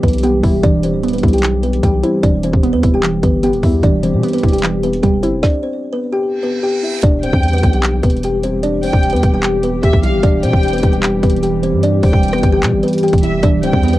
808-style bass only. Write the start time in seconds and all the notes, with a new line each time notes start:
0.03 B1
0.43 E1
0.63 E1
0.93 D1
1.23 B1
1.83 B1
2.23 E1
2.53 E1
2.73 E2
2.83 E1
3.23 G1
3.53 D1
3.63 E2
3.83 E1
4.13 B2
4.43 E1
5.03 E1
5.23 G1
5.33 E1
7.03 E1
7.23 D1
7.33 E2
7.63 B1
8.03 E1
8.93 E1
9.13 E2
9.23 E1
9.83 E1
9.93 B1
10.13 G1
10.23 E1
10.43 B2
10.53 E1
10.83 E1
11.23 E1
11.73 G2
12.03 D1
12.13 E1
12.43 G1
12.63 B2
12.73 G1
13.13 E1
13.33 F1
13.43 E1
13.63 D1
13.73 E2